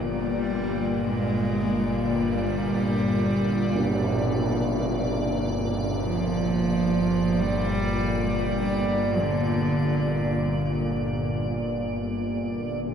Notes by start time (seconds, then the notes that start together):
Already playing: G1 A#2 D5
0.04 F3
0.12 G3
1.04 G#3
1.96 G3
3.75 tam-tam
6.02 F3
7.40 G3
8.30 G3
9.21 D3
12.84 G1 A#2 D5, tam-tam